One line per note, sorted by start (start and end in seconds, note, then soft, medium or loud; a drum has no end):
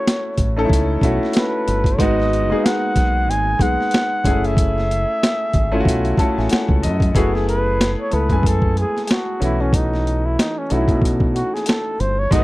0.00 0.30 A3 medium
0.00 0.31 C#4 medium
0.00 0.31 E4 medium
0.00 0.31 F#4 medium
0.00 1.03 C#5 medium
0.07 snare loud
0.07 closed hi-hat medium
0.38 0.65 A1 medium
0.38 kick medium
0.38 closed hi-hat medium
0.56 1.00 A3 medium
0.56 1.00 C#4 medium
0.56 0.62 D#4 medium
0.56 1.01 A4 loud
0.65 1.02 E4 medium
0.69 0.97 C#2 medium
0.69 kick medium
0.69 closed hi-hat medium
1.01 1.17 B1 medium
1.01 1.93 A3 medium
1.01 1.94 C#4 medium
1.01 1.94 E4 medium
1.01 1.95 F#4 medium
1.01 kick medium
1.01 closed hi-hat medium
1.23 snare soft
1.33 2.01 B4 medium
1.33 snare loud
1.33 closed hi-hat medium
1.68 2.00 G1 medium
1.68 closed hi-hat medium
1.84 kick medium
1.84 closed hi-hat soft
1.98 2.52 G#1 loud
1.98 2.46 G#3 medium
1.98 2.46 B3 medium
1.98 2.47 D#4 medium
1.98 2.47 F#4 loud
1.98 2.66 D#5 loud
1.98 kick loud
1.98 closed hi-hat medium
2.20 snare soft
2.33 closed hi-hat medium
2.50 3.54 G#3 medium
2.50 2.56 A#3 medium
2.50 3.55 D#4 medium
2.50 3.55 G#4 medium
2.57 3.58 B3 medium
2.65 3.31 F#5 loud
2.65 snare loud
2.65 closed hi-hat medium
2.96 3.29 B1 medium
2.96 kick medium
2.96 snare soft
2.96 closed hi-hat medium
3.29 3.55 G#1 medium
3.29 3.64 G#5 loud
3.29 closed hi-hat medium
3.59 3.75 B1 medium
3.59 4.23 G#3 medium
3.59 4.25 B3 medium
3.59 4.25 D#4 medium
3.59 4.25 G#4 medium
3.59 4.48 F#5 loud
3.59 kick medium
3.59 closed hi-hat medium
3.80 snare soft
3.91 snare loud
3.91 closed hi-hat medium
4.24 5.04 F#1 loud
4.24 4.32 G#3 medium
4.24 5.47 C#4 medium
4.24 5.47 E4 medium
4.24 5.48 G#4 medium
4.24 kick medium
4.24 closed hi-hat medium
4.30 5.49 A3 medium
4.44 6.52 E5 loud
4.44 closed hi-hat soft
4.57 kick loud
4.57 closed hi-hat medium
4.78 snare soft
4.91 closed hi-hat medium
5.23 snare loud
5.23 closed hi-hat medium
5.53 5.81 G#1 medium
5.53 kick medium
5.53 closed hi-hat medium
5.72 6.15 A3 medium
5.72 6.15 C#4 medium
5.72 6.16 E4 medium
5.72 5.78 F4 medium
5.80 6.20 F#4 loud
5.85 6.13 B1 medium
5.85 kick loud
5.85 closed hi-hat medium
6.05 closed hi-hat soft
6.17 7.09 A3 medium
6.17 7.10 C#4 medium
6.17 7.10 E4 medium
6.17 7.10 A4 medium
6.17 6.36 A5 medium
6.17 muted fingered electric bass stroke soft
6.17 kick medium
6.17 closed hi-hat medium
6.38 6.49 A1 medium
6.38 6.50 G#5 medium
6.38 snare soft
6.49 6.81 F#5 medium
6.49 snare loud
6.49 closed hi-hat medium
6.69 6.86 C#2 medium
6.69 kick medium
6.83 7.10 F#2 medium
6.83 7.13 D#5 medium
6.83 closed hi-hat medium
7.00 kick medium
7.00 closed hi-hat soft
7.15 7.94 F#1 medium
7.15 8.06 A3 medium
7.15 8.06 B3 medium
7.15 8.07 E4 medium
7.15 7.36 F#4 medium
7.15 8.07 G#4 loud
7.15 kick loud
7.15 closed hi-hat medium
7.35 7.48 G#4 medium
7.35 snare soft
7.49 7.95 B4 loud
7.49 closed hi-hat medium
7.81 snare loud
7.81 closed hi-hat medium
8.00 8.15 C#5 medium
8.11 8.28 C#2 medium
8.11 8.28 A3 medium
8.11 8.29 B3 medium
8.11 8.29 E4 medium
8.11 8.30 A4 medium
8.11 8.49 B4 medium
8.11 closed hi-hat medium
8.29 8.83 F#2 medium
8.29 8.36 G#3 medium
8.29 9.41 B3 medium
8.29 9.41 E4 medium
8.29 9.42 G#5 medium
8.29 kick medium
8.29 closed hi-hat soft
8.37 9.38 A3 medium
8.43 kick medium
8.43 closed hi-hat medium
8.47 8.78 A4 medium
8.62 kick medium
8.77 9.04 G#4 medium
8.77 closed hi-hat medium
8.97 snare soft
8.97 closed hi-hat soft
9.04 9.13 G#4 medium
9.04 closed hi-hat medium
9.11 9.42 F#4 medium
9.11 snare loud
9.40 10.36 B1 medium
9.40 10.63 E3 medium
9.40 10.62 A3 medium
9.40 10.62 C#4 medium
9.40 9.63 E4 medium
9.40 10.63 F#4 medium
9.40 closed hi-hat medium
9.61 9.77 C#4 medium
9.73 10.27 D#4 medium
9.73 kick loud
9.73 closed hi-hat medium
9.94 snare soft
10.07 closed hi-hat medium
10.26 10.41 E4 medium
10.39 10.60 D#4 medium
10.39 snare loud
10.39 closed hi-hat medium
10.58 10.74 C#4 medium
10.69 10.90 B1 medium
10.69 11.92 A3 medium
10.69 11.92 C#4 medium
10.69 10.78 D#4 soft
10.69 11.03 E4 medium
10.69 11.93 F#4 medium
10.69 closed hi-hat medium
10.77 11.95 E4 medium
10.88 11.41 B2 medium
10.88 kick medium
10.88 closed hi-hat soft
11.02 kick medium
11.02 closed hi-hat medium
11.20 kick medium
11.35 11.55 F#4 medium
11.35 closed hi-hat medium
11.54 11.69 G#4 medium
11.54 snare soft
11.54 closed hi-hat soft
11.66 12.02 A4 medium
11.66 snare loud
11.66 closed hi-hat medium
12.00 12.26 G1 medium
12.00 12.20 C5 medium
12.00 closed hi-hat medium
12.19 12.34 C#5 loud
12.31 12.44 G#1 loud
12.31 12.44 G#3 medium
12.31 12.39 A3 medium
12.31 12.44 D#4 medium
12.31 12.44 F#4 loud
12.31 12.44 D#5 loud
12.31 kick loud
12.31 closed hi-hat medium
12.38 12.44 B3 medium